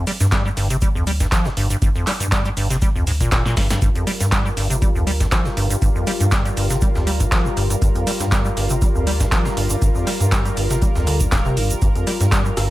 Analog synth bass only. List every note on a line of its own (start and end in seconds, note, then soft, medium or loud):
0.20 0.51 G2 medium
0.57 0.89 G1 medium
0.95 1.26 D2 medium
1.32 1.41 G1 medium
1.57 1.75 G1 medium
1.82 1.91 G1 medium
2.20 2.51 G2 medium
2.57 2.89 G1 medium
2.96 3.26 D2 medium
3.32 3.41 D1 loud
3.57 3.75 G1 medium
3.82 3.91 G1 loud
4.21 4.52 G2 medium
4.57 4.89 G1 medium
4.95 5.26 D2 medium
5.32 5.41 G1 medium
5.57 5.75 G1 medium
5.82 5.91 G1 loud
6.20 6.51 G2 medium
6.57 6.89 G1 medium
6.95 7.26 D2 medium
7.32 7.41 G1 medium
7.57 7.75 G1 medium
7.82 7.91 G1 loud
8.20 8.51 G2 medium
8.57 8.89 G1 loud
8.95 9.26 D2 medium
9.32 9.41 G1 medium
9.57 9.75 G1 medium
9.82 9.91 G1 loud
10.20 10.51 G2 medium
10.57 10.89 G1 loud
10.96 11.26 D2 medium
11.32 11.50 D1 loud
11.57 11.75 G1 medium
11.82 11.91 G1 medium
12.21 12.51 G2 medium
12.57 12.70 G1 medium